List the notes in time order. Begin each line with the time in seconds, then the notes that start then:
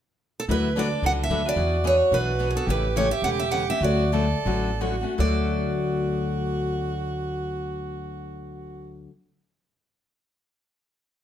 0.40 A4
0.48 D2 D3 F#3 A3 D4 E4 F#4 B4
0.75 D3 F#3 A3 D4 F#4 B4 D5
1.02 C#2 D3 F#3 A3 D4 F#4 B4 F#5
1.24 E5
1.29 D2 D3 F#3 A3 D4 F#4 B4
1.45 A3 D4 F#4 B4 D5
1.56 E2 E3 B3 D4 F#4 G#4
1.84 E3 B3 D4 G#4 C#5
2.11 B1 E3 B3 D4 G#4 B4
2.39 E3 B3 D4 G#4
2.51 G#4
2.55 B3 D4 G#4 A4
2.66 A1 C#3 E3 A3 C#4 G4 B4
2.96 C#3 E3 A3 C#4 G4 C#5
3.11 E5
3.22 E1 C#3 E3 A3 C#4 G4 F#5
3.40 E5
3.51 C#3 E3 A3 C#4 G4 F#5
3.69 A3 C#4 G4 E5
3.81 D2 D3 F#3 A3 C#4 F#4 D5
4.12 D3 F#3 A3 C#4 F#4 A4
4.45 A1 D3 F#3 A3 C#4 F#4
4.81 D3 F#3 A3 C#4 F#4
5.01 A3 C#4 F#4
5.17 D2 D3 F#3 A3 F#4 D5